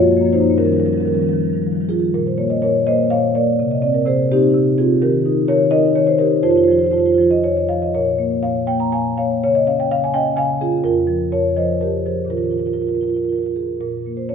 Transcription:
Already playing: F4 C#5
0.00 F#2 F3 A#3
0.08 F#2 F3 A#3
0.17 F3 A#3
0.21 F#2 A#3
0.26 F3
0.31 F#2 A#3 D#4 C5
0.35 F3
0.41 F#2 A#3
0.46 F#2 F3
0.50 A#3
0.58 D#3 F3 G3 C#4 A#4
0.65 D#3 F3 G3 C#4 A#4
0.72 G3 C#4 A#4
0.77 D#3 F3 A#4
0.81 F3 G3 C#4
0.86 D#3 C#4 A#4
0.93 D#3 F3 G3 A#4
0.97 C#4 A#4
1.02 D#3 F3 G3 C#4
1.08 A#4
1.12 D#3 F3 G3 C#4 A#4
1.19 F3 G3 C#4 A#4
1.24 D#3 C#4
1.29 F3 G3 A#4
1.33 D#3
1.38 F3 G3
1.43 D#3 G3
1.50 D#3 F3
1.55 F3 G3
1.62 D#3 G3
1.67 F3
1.72 D#3 F3 G3
1.81 D#3 F3 G3
1.89 D#3 G3 F4 G#4
1.93 F3
2.00 D#3 F3 G3
2.14 A#2 A#4
2.27 C5
2.38 A#3 C#5
2.50 D#5
2.62 A#2 A#4 C#5
2.87 A#3 C5 D#5
3.10 A#2 C#5 F5
3.35 A#3 A#4 D5
3.59 C3
3.71 D#5
3.82 C4 D5
3.94 A#4
4.06 C3 G#4 C5
4.32 C4 D#4 G4
4.54 C3
4.78 C4 F4 G#4
5.02 D#3 G4 A#4
5.26 D#4
5.48 D#3 A#4 C#5
5.71 D#4 A#4 D#5
5.96 D#3 C#5
6.07 C5
6.19 D#4 G4 A#4
6.43 F2 F4 C5
6.50 F4 C5
6.56 F4 C5
6.64 F4 C5
6.68 F3 F4 C5
6.78 F4 C5
6.84 F4 C5
6.91 F2 F4 C5
6.98 F4 C5
7.06 F4 C5
7.12 F4 C5
7.18 F3 F4 C5
7.31 D#5
7.44 F2 C#5
7.57 D#5
7.69 F3 F5
7.82 D#5
7.94 A#2 A#4 C#5
8.18 A#3
8.43 A#2 C#5 F5
8.67 A#3 G5
8.80 A#5
8.92 A#2 F5 G#5
9.18 A#3 C#5 F5
9.44 C#3 C#5
9.55 D#5
9.67 C#4 F5
9.80 G5
9.91 C#3 F5
10.04 G#5
10.14 C#4 D#5 G5
10.36 C#3 F5 G#5
10.61 C#4 F4 G#4
10.84 F2 F4 A#4
11.07 F3
11.32 F2 A#4 C#5
11.56 F3 C5 D#5
11.81 F2 G4 A#4
12.06 F3 G#4 C5
12.25 A#2 D#3 C#4
12.30 F4 A#4
12.37 F4 A#4
12.43 F4 A#4
12.51 F4 A#4
12.58 F4 A#4
12.66 F4 A#4
12.73 F4 A#4
12.80 F4 A#4
12.87 F4 A#4
12.93 F4 A#4
13.01 F4 A#4
13.08 F4 A#4
13.14 F4 A#4
13.22 F4 A#4
13.29 F4 A#4
13.35 F4 A#4
13.43 F4 A#4
13.56 G#4
13.80 A#2 A#4
14.06 A#3
14.17 C5
14.29 C#4 C#5

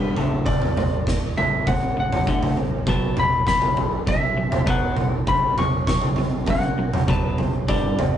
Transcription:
Already playing: E1 G2 D3 G3 B4
0.16 D1 D2 A2 D3, floor tom
0.46 D1 D5, kick, floor tom
0.62 mid tom
0.77 D1 D2 A2, floor tom, mid tom
1.07 D1 D2 A2, kick, snare
1.37 D1 D2 A2 E5, floor tom
1.67 D1 D2 A2 F#5, kick, floor tom
1.96 D1 D2 A2 F#5
2.12 floor tom, mid tom
2.27 D1 D2 A2 D3, kick
2.43 floor tom
2.57 D1 D2, floor tom
2.87 B1 B2 F#3 B3 A5, kick, floor tom
3.17 B1 B2 F#3 B5, floor tom, mid tom
3.47 B1 B2 F#3 B5, kick, snare
3.62 floor tom
3.76 B1 B2 F#3, floor tom
4.07 B1 B2 F#3 E5, kick, floor tom
4.35 B1 B2 F#3
4.52 floor tom, mid tom
4.66 B1 B2 F#3 B3 F#5, kick, mid tom
4.97 B1 F#3, floor tom
5.27 B1 B2 F#3 B5, kick, floor tom
5.58 B1 B2 F#3 C#6, floor tom, mid tom
5.87 B1 B2 F#3 C#6, kick, snare
6.01 floor tom
6.16 B1 B2 F#3, floor tom
6.46 B1 B2 F#3 F#5, kick, floor tom
6.78 B1 B2 F#3
6.94 floor tom, mid tom
7.08 B1 B2 F#3 B3 A5, kick, mid tom
7.38 B1 B2 F#3, floor tom
7.68 G1 G2 D3 G3 D5, kick, floor tom
7.98 G1 G2 D3, floor tom, mid tom

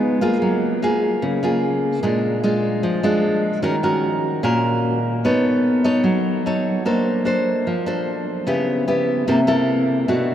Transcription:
Already playing: G#3 B3 D#4 F4
0.21 A#3 F4 G#4
0.42 F#3
0.82 A#3 F4 G#4
1.22 C#3
1.43 A#3 F4 G#4
2.03 A#2 G#3 D4 F4
2.44 G#3 D4 F4
2.83 F3
3.03 G#3 D4 F4
3.62 D#3 C#4 F#4 A#4
3.83 C#4 F#4 A#4
4.43 A#2 C#4 F#4 A#4
5.25 B3 D#4 A4 C#5
5.84 D#4 A4 C#5
6.04 F#3
6.46 D#4 A4 C#5
6.85 A#3 D4 A4 C5
7.25 D4 A4 C5
7.67 F3
7.86 D4 A4 C5
8.47 C#3 B3 E4 G4
8.88 B3 E4 G4
9.28 C3 A#3 E4 A4
9.47 A#3 E4 A4
10.08 B2 A3 D4 F#4

